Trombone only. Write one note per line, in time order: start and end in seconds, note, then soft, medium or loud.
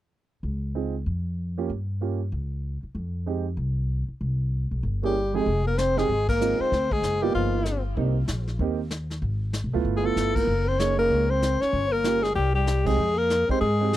5.03 5.36 G3 medium
5.35 5.66 G#3 medium
5.66 5.79 A#3 medium
5.77 5.99 C4 medium
5.98 6.28 G#3 medium
6.29 6.62 A#3 medium
6.60 6.93 C4 medium
6.92 7.24 G#3 medium
7.23 7.34 G3 medium
7.35 7.82 F3 medium
9.96 10.05 G#3 medium
10.03 10.38 A3 medium
10.37 10.69 A#3 medium
10.67 10.80 C4 medium
10.78 10.98 C#4 medium
10.98 11.31 A#3 medium
11.29 11.61 C4 medium
11.60 11.93 C#4 medium
11.91 12.23 A#3 medium
12.22 12.33 G#3 medium
12.34 12.53 G3 medium
12.54 12.86 G3 medium
12.84 13.17 G#3 medium
13.16 13.47 A#3 medium
13.48 13.59 C4 medium
13.60 13.97 G#3 medium